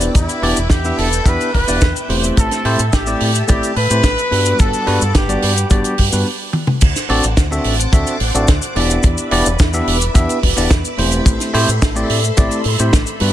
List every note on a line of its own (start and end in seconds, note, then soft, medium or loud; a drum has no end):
0.00 0.39 B3 medium
0.00 0.39 D4 medium
0.00 0.40 E4 medium
0.00 0.40 G4 medium
0.00 2.35 B4 medium
0.00 0.40 D5 medium
0.00 4.28 E5 medium
0.00 2.35 G5 medium
0.00 2.34 D6 medium
0.00 closed hi-hat medium
0.00 cabasa medium
0.14 0.25 E2 loud
0.14 0.66 E4 medium
0.14 kick loud
0.14 closed hi-hat medium
0.14 cabasa medium
0.29 closed hi-hat medium
0.29 cabasa soft
0.42 0.53 E1 medium
0.42 0.57 B3 medium
0.42 0.57 D4 medium
0.42 0.57 E4 medium
0.42 0.57 G4 medium
0.42 0.58 D5 loud
0.42 open hi-hat loud
0.56 0.67 E1 medium
0.56 closed hi-hat medium
0.56 cabasa medium
0.70 0.91 E2 medium
0.70 0.98 G4 loud
0.70 kick loud
0.70 snare loud
0.70 closed hi-hat medium
0.70 cabasa medium
0.84 1.07 B3 medium
0.84 1.07 D4 medium
0.84 1.07 E4 medium
0.84 1.07 G4 medium
0.84 1.08 E5 medium
0.84 cabasa soft
0.98 1.19 E1 medium
0.98 1.26 A4 loud
0.98 snare soft
0.98 open hi-hat loud
1.12 closed hi-hat medium
1.12 cabasa medium
1.26 1.36 E2 medium
1.26 1.49 B3 medium
1.26 1.49 D4 medium
1.26 1.49 E4 medium
1.26 1.49 G4 medium
1.26 1.52 B4 loud
1.26 1.49 E5 loud
1.26 kick loud
1.26 closed hi-hat medium
1.26 cabasa medium
1.41 closed hi-hat medium
1.41 cabasa soft
1.53 1.65 E1 medium
1.53 2.06 B4 loud
1.53 kick medium
1.53 open hi-hat medium
1.67 1.78 E1 medium
1.67 1.81 B3 medium
1.67 1.82 D4 medium
1.67 1.82 E4 medium
1.67 1.82 G4 medium
1.67 1.82 D5 medium
1.67 open hi-hat medium
1.67 cabasa medium
1.81 1.92 E2 medium
1.81 kick loud
1.81 snare loud
1.81 closed hi-hat medium
1.81 cabasa medium
1.96 closed hi-hat soft
1.96 cabasa medium
2.09 2.30 E1 medium
2.09 2.62 A3 medium
2.09 2.62 C4 medium
2.09 2.62 E4 medium
2.09 2.62 G4 medium
2.09 2.62 C5 medium
2.09 open hi-hat loud
2.24 closed hi-hat medium
2.24 cabasa medium
2.37 2.48 A1 loud
2.37 4.30 A4 medium
2.37 2.89 A4 loud
2.37 6.22 A5 medium
2.37 4.30 E6 medium
2.37 kick loud
2.37 closed hi-hat medium
2.37 cabasa medium
2.51 snare soft
2.51 closed hi-hat soft
2.51 cabasa medium
2.65 2.75 A2 medium
2.65 2.79 A3 medium
2.65 2.79 C4 medium
2.65 2.80 E4 medium
2.65 2.80 G4 medium
2.65 2.80 C5 loud
2.65 open hi-hat medium
2.79 2.89 A2 medium
2.79 closed hi-hat medium
2.79 cabasa medium
2.93 3.13 A1 medium
2.93 3.47 G4 medium
2.93 kick loud
2.93 snare loud
2.93 closed hi-hat medium
2.93 cabasa medium
3.06 3.29 A3 medium
3.06 3.29 C4 medium
3.06 3.29 E4 medium
3.06 3.30 G4 medium
3.06 3.30 D5 medium
3.06 cabasa soft
3.20 3.41 A2 medium
3.20 open hi-hat loud
3.35 closed hi-hat medium
3.35 cabasa medium
3.48 3.59 A1 medium
3.48 3.71 A3 medium
3.48 3.71 C4 medium
3.48 3.71 E4 medium
3.48 3.74 G4 medium
3.48 3.71 G4 medium
3.48 3.71 D5 loud
3.48 kick loud
3.48 closed hi-hat medium
3.48 cabasa medium
3.63 closed hi-hat medium
3.63 cabasa medium
3.76 3.87 A2 medium
3.76 4.55 B4 loud
3.76 open hi-hat medium
3.90 4.00 A2 medium
3.90 4.04 A3 medium
3.90 4.04 C4 medium
3.90 4.04 E4 medium
3.90 4.04 G4 medium
3.90 4.04 C5 medium
3.90 closed hi-hat medium
3.90 cabasa medium
4.03 4.14 A1 medium
4.03 kick loud
4.03 snare loud
4.03 closed hi-hat medium
4.03 cabasa medium
4.18 closed hi-hat medium
4.18 cabasa soft
4.31 4.52 G2 medium
4.31 4.84 G3 medium
4.31 4.84 B3 medium
4.31 4.84 D4 medium
4.31 4.84 F#4 medium
4.31 6.24 B4 medium
4.31 4.84 B4 medium
4.31 6.24 F#5 medium
4.31 6.24 D6 medium
4.31 open hi-hat loud
4.46 closed hi-hat medium
4.46 cabasa medium
4.59 4.70 G1 loud
4.59 5.15 A4 loud
4.59 kick loud
4.59 closed hi-hat medium
4.59 cabasa medium
4.73 closed hi-hat soft
4.73 cabasa medium
4.86 4.98 G2 medium
4.86 5.01 G3 loud
4.86 5.02 B3 medium
4.86 5.02 D4 medium
4.86 5.02 F#4 medium
4.86 5.02 B4 loud
4.86 open hi-hat loud
5.02 5.11 G2 medium
5.02 closed hi-hat medium
5.02 cabasa medium
5.14 5.35 G1 medium
5.14 5.69 G4 medium
5.14 kick loud
5.14 snare loud
5.14 closed hi-hat medium
5.14 cabasa medium
5.29 5.51 G3 medium
5.29 5.51 B3 medium
5.29 5.52 D4 medium
5.29 5.52 F#4 medium
5.29 5.52 D5 medium
5.29 closed hi-hat medium
5.29 cabasa soft
5.42 5.63 G2 medium
5.42 snare soft
5.42 open hi-hat loud
5.56 closed hi-hat medium
5.56 cabasa medium
5.70 5.81 G1 medium
5.70 5.93 G3 medium
5.70 5.93 B3 medium
5.70 5.93 D4 medium
5.70 5.93 F#4 medium
5.70 6.22 G4 medium
5.70 5.94 D5 loud
5.70 kick loud
5.70 closed hi-hat medium
5.70 cabasa medium
5.84 closed hi-hat soft
5.84 cabasa soft
5.98 6.09 G2 medium
5.98 kick medium
5.98 open hi-hat loud
6.12 6.23 G2 medium
6.12 6.26 G3 medium
6.12 6.26 B3 medium
6.12 6.26 D4 medium
6.12 6.26 F#4 medium
6.12 6.26 B4 medium
6.12 open hi-hat medium
6.12 cabasa medium
6.53 high tom medium
6.67 mid tom medium
6.81 6.92 D2 loud
6.81 8.74 C5 medium
6.81 8.74 F#5 medium
6.81 8.74 A5 medium
6.81 11.22 D6 medium
6.81 kick loud
6.81 closed hi-hat medium
6.81 crash loud
6.81 cabasa medium
6.96 snare soft
6.96 closed hi-hat medium
6.96 cabasa medium
7.09 7.20 A1 loud
7.09 7.24 C4 loud
7.09 7.24 D4 medium
7.09 7.24 F#4 medium
7.09 7.24 A4 medium
7.09 7.24 D5 loud
7.09 open hi-hat loud
7.23 7.34 A1 medium
7.23 closed hi-hat medium
7.23 cabasa medium
7.37 7.57 D2 loud
7.37 kick loud
7.37 snare loud
7.37 closed hi-hat loud
7.37 cabasa medium
7.51 7.74 C4 medium
7.51 7.74 D4 medium
7.51 7.74 F#4 medium
7.51 7.74 A4 medium
7.51 7.74 E5 medium
7.51 cabasa medium
7.64 7.85 A1 medium
7.64 open hi-hat loud
7.79 closed hi-hat medium
7.79 cabasa medium
7.92 8.03 D2 medium
7.92 8.15 C4 medium
7.92 8.15 D4 medium
7.92 8.15 F#4 medium
7.92 8.16 A4 medium
7.92 8.16 E5 loud
7.92 kick loud
7.92 closed hi-hat medium
7.92 cabasa medium
8.07 closed hi-hat medium
8.07 cabasa medium
8.20 8.31 A1 medium
8.20 open hi-hat loud
8.34 8.44 A1 medium
8.34 8.48 C4 medium
8.34 8.48 D4 medium
8.34 8.49 F#4 medium
8.34 8.49 A4 medium
8.34 8.49 D5 medium
8.34 closed hi-hat medium
8.34 cabasa medium
8.48 8.59 D2 medium
8.48 kick loud
8.48 snare loud
8.48 closed hi-hat medium
8.48 cabasa medium
8.62 closed hi-hat medium
8.62 cabasa medium
8.76 8.96 E1 loud
8.76 9.28 B3 medium
8.76 9.28 D4 medium
8.76 9.29 E4 medium
8.76 9.29 G4 medium
8.76 11.24 B4 medium
8.76 9.29 D5 medium
8.76 13.17 E5 medium
8.76 13.33 B5 medium
8.76 open hi-hat loud
8.90 closed hi-hat medium
8.90 cabasa medium
9.03 9.14 E2 loud
9.03 kick loud
9.03 closed hi-hat medium
9.03 cabasa medium
9.18 closed hi-hat medium
9.18 cabasa medium
9.31 9.42 E1 loud
9.31 9.46 B3 loud
9.31 9.46 D4 medium
9.31 9.46 E4 medium
9.31 9.46 G4 medium
9.31 9.46 D5 loud
9.31 open hi-hat loud
9.46 9.56 E1 medium
9.46 closed hi-hat medium
9.46 cabasa medium
9.59 9.80 E2 medium
9.59 kick loud
9.59 snare loud
9.59 closed hi-hat medium
9.59 cabasa medium
9.73 9.96 B3 medium
9.73 9.96 D4 medium
9.73 9.96 E4 medium
9.73 9.96 G4 medium
9.73 9.96 E5 loud
9.73 cabasa medium
9.87 10.08 E1 medium
9.87 open hi-hat loud
10.01 closed hi-hat medium
10.01 cabasa medium
10.15 10.25 E2 medium
10.15 10.37 B3 medium
10.15 10.38 D4 medium
10.15 10.38 E4 medium
10.15 10.38 G4 medium
10.15 10.38 E5 loud
10.15 kick loud
10.15 closed hi-hat medium
10.15 cabasa medium
10.29 closed hi-hat soft
10.29 cabasa soft
10.43 10.53 E1 medium
10.43 kick medium
10.43 open hi-hat loud
10.57 10.67 E1 loud
10.57 10.71 B3 medium
10.57 10.71 D4 medium
10.57 10.71 E4 medium
10.57 10.71 G4 medium
10.57 10.71 D5 medium
10.57 open hi-hat medium
10.57 cabasa medium
10.70 10.81 E2 medium
10.70 kick loud
10.70 snare loud
10.70 closed hi-hat medium
10.70 cabasa medium
10.85 closed hi-hat soft
10.85 cabasa medium
10.98 11.19 E1 loud
10.98 11.50 A3 medium
10.98 11.51 C4 medium
10.98 11.51 E4 medium
10.98 11.51 G4 medium
10.98 11.51 C5 medium
10.98 open hi-hat loud
11.11 closed hi-hat medium
11.11 cabasa medium
11.26 11.36 A1 loud
11.26 13.19 A4 medium
11.26 13.19 C6 medium
11.26 kick loud
11.26 closed hi-hat medium
11.26 cabasa medium
11.40 snare soft
11.40 closed hi-hat medium
11.40 cabasa medium
11.53 11.64 A2 loud
11.53 11.68 A3 loud
11.53 11.68 C4 medium
11.53 11.68 E4 medium
11.53 11.69 G4 medium
11.53 11.69 C5 loud
11.53 open hi-hat loud
11.69 11.78 A2 medium
11.69 closed hi-hat medium
11.69 cabasa medium
11.82 12.02 A1 loud
11.82 kick loud
11.82 snare loud
11.82 closed hi-hat medium
11.82 cabasa medium
11.95 12.18 A3 medium
11.95 12.18 C4 medium
11.95 12.18 E4 medium
11.95 12.18 G4 medium
11.95 12.18 D5 loud
11.95 cabasa medium
12.10 12.30 A2 medium
12.10 open hi-hat loud
12.24 closed hi-hat medium
12.24 cabasa medium
12.37 12.48 A1 medium
12.37 12.60 A3 medium
12.37 12.60 C4 medium
12.37 12.60 E4 medium
12.37 12.60 G4 medium
12.37 12.60 D5 loud
12.37 kick loud
12.37 closed hi-hat medium
12.37 cabasa medium
12.51 closed hi-hat soft
12.51 cabasa medium
12.64 12.75 A2 medium
12.64 open hi-hat loud
12.79 12.89 A2 medium
12.79 12.93 A3 medium
12.79 12.93 C4 medium
12.79 12.93 E4 medium
12.79 12.93 G4 medium
12.79 12.93 C5 medium
12.79 closed hi-hat medium
12.79 cabasa medium
12.93 13.03 A1 medium
12.93 kick loud
12.93 snare loud
12.93 closed hi-hat medium
12.93 cabasa medium
13.06 closed hi-hat medium
13.06 cabasa soft
13.20 13.33 G2 loud
13.20 13.33 G3 medium
13.20 13.33 B3 medium
13.20 13.33 D4 medium
13.20 13.33 F#4 medium
13.20 13.33 B4 medium
13.20 13.33 F#5 medium
13.20 13.33 D6 medium
13.20 open hi-hat loud